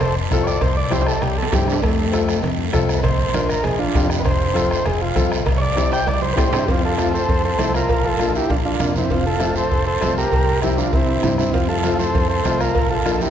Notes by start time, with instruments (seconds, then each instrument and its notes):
Already playing: transistor combo organ A4 C5
0.01 fingered electric bass F1, bombo rim, cowbell, high conga, low conga, long guiro
0.31 fingered electric bass C2, upright piano C4 F4 A4, bombo low, bombo rim, high conga, low conga, short guiro
0.43 transistor combo organ C#5, bombo rim, short guiro
0.48 transistor combo organ D5
0.61 fingered electric bass C2, transistor combo organ C5, bombo low, bombo rim, cowbell, high conga, low conga, long guiro
0.77 transistor combo organ D5
0.90 upright piano C4 E4 G4, transistor combo organ C5, bombo rim, high conga, high timbale, short guiro
1.01 high timbale
1.07 transistor combo organ A4, bombo rim, short guiro
1.22 fingered electric bass C2, transistor combo organ G4, bombo rim, cowbell, high conga, low conga, long guiro
1.38 transistor combo organ A4
1.42 low timbale
1.52 fingered electric bass G2, upright piano C4 E4 G4, transistor combo organ G4, bombo low, bombo rim, high conga, low timbale, short guiro
1.67 transistor combo organ D4, bombo rim, short guiro
1.72 low timbale
1.82 fingered electric bass F2, transistor combo organ A3, bombo low, bombo rim, cowbell, high conga, long guiro
2.11 upright piano C4 F4 A4, bombo rim, high conga, short guiro
2.29 bombo rim, short guiro
2.43 fingered electric bass F2, bombo rim, cowbell, high conga, low conga, long guiro
2.73 fingered electric bass C2, upright piano C4 F4 A4, bombo low, bombo rim, high conga, low conga, low timbale, short guiro
2.89 bombo rim, short guiro
2.98 transistor combo organ B4
3.03 fingered electric bass A#1, transistor combo organ C5, bombo low, bombo rim, cowbell, high conga, low conga, long guiro
3.34 upright piano D4 F4 A#4, bombo rim, high conga, short guiro
3.49 transistor combo organ A#4, bombo rim, short guiro
3.63 fingered electric bass A#1, transistor combo organ G#4, bombo rim, cowbell, high conga, low conga, long guiro
3.79 transistor combo organ D4 F4
3.95 fingered electric bass F2, upright piano D4 F4 G4, bombo low, bombo rim, high conga, low conga, low timbale, short guiro
4.10 bombo rim, short guiro
4.20 transistor combo organ B4
4.24 fingered electric bass F1, transistor combo organ C5, bombo low, bombo rim, cowbell, high conga, long guiro
4.54 upright piano C4 F4 A4, bombo rim, high conga, short guiro
4.71 transistor combo organ C5, bombo rim, short guiro
4.86 fingered electric bass F1, transistor combo organ G#4, bombo rim, cowbell, high conga, low conga, long guiro
5.01 transistor combo organ F4
5.15 fingered electric bass C2, upright piano C4 F4 A4, bombo low, bombo rim, high conga, low conga, short guiro
5.32 bombo rim, short guiro
5.46 fingered electric bass C2, bombo low, bombo rim, cowbell, high conga, low conga, long guiro
5.58 transistor combo organ C#5 D5
5.76 upright piano C4 E4 G4, bombo rim, high conga, short guiro
5.92 transistor combo organ G5, bombo rim, high timbale, short guiro
6.06 fingered electric bass C2, transistor combo organ D5, bombo rim, cowbell, high conga, low conga, long guiro
6.22 transistor combo organ C5, high conga, high timbale
6.33 upright piano C4 E4 G4, transistor combo organ B4
6.37 fingered electric bass A2, transistor combo organ C5, bombo low, bombo rim, low timbale, short guiro
6.53 fingered electric bass G2, transistor combo organ C4 E4, bombo rim, low conga, low timbale, short guiro
6.65 fingered electric bass F2, transistor combo organ G4, bombo low, cowbell, long guiro
6.70 transistor combo organ C4 F4
6.85 transistor combo organ F4 A4
6.98 upright piano A3 C4 F4, bombo rim, cowbell, high conga, short guiro
7.14 transistor combo organ A4 C5, short guiro
7.29 fingered electric bass F2, bombo low, cowbell, long guiro
7.45 transistor combo organ A4 C5
7.58 fingered electric bass C2, upright piano A3 C4 E4, bombo rim, cowbell, high conga, low timbale, short guiro
7.74 transistor combo organ F4 A#4, bombo rim, short guiro
7.89 fingered electric bass A#1, bombo low, cowbell, long guiro
8.05 transistor combo organ F4 A4
8.19 upright piano A#3 D4 F4, bombo rim, cowbell, high conga, short guiro
8.35 transistor combo organ E4 G4, short guiro
8.50 fingered electric bass A#1, transistor combo organ D4 F4, bombo low, cowbell, long guiro
8.65 transistor combo organ D4 F4
8.79 fingered electric bass F2, upright piano A#3 D4 F4, bombo rim, cowbell, high conga, low conga, short guiro
8.96 transistor combo organ C4 E4, low conga, short guiro
9.10 fingered electric bass F1, transistor combo organ C4 F4, bombo low, cowbell, long guiro
9.27 transistor combo organ F4 A4
9.40 upright piano A3 C4 F4, bombo rim, cowbell, high conga, short guiro
9.56 transistor combo organ A4 C5, high conga, short guiro
9.71 fingered electric bass F1, bombo low, cowbell, long guiro
9.87 transistor combo organ A4 C5
10.01 fingered electric bass C2, upright piano A3 C4 F4, bombo rim, cowbell, high conga, low timbale, short guiro
10.18 transistor combo organ G4 A#4, short guiro
10.32 fingered electric bass C2, bombo low, cowbell, long guiro
10.62 upright piano G3 C4 E4, transistor combo organ E4 G4, bombo rim, cowbell, high conga, short guiro
10.78 transistor combo organ D4 F4, high conga, short guiro
10.93 fingered electric bass C2, transistor combo organ C4 E4, bombo low, cowbell, long guiro
11.23 fingered electric bass G2, upright piano G3 C4 E4, bombo rim, cowbell, high conga, low conga, short guiro
11.38 transistor combo organ C4 E4, bombo rim, low conga, short guiro
11.53 fingered electric bass F2, transistor combo organ C4 F4, bombo low, cowbell, long guiro
11.69 transistor combo organ F4 A4
11.83 upright piano A3 C4 F4, bombo rim, cowbell, high conga, short guiro
11.99 transistor combo organ A4 C5, high conga, short guiro
12.15 fingered electric bass F2, bombo low, cowbell, long guiro
12.29 transistor combo organ A4 C5
12.44 fingered electric bass C2, upright piano A3 C4 F4, bombo rim, cowbell, high conga, short guiro
12.60 transistor combo organ F4 A#4, bombo rim, short guiro
12.75 fingered electric bass A#1, bombo low, cowbell, long guiro
12.90 transistor combo organ F4 A4
13.05 upright piano A#3 D4 F4, bombo rim, cowbell, high conga, short guiro
13.21 transistor combo organ E4 G4, high conga, short guiro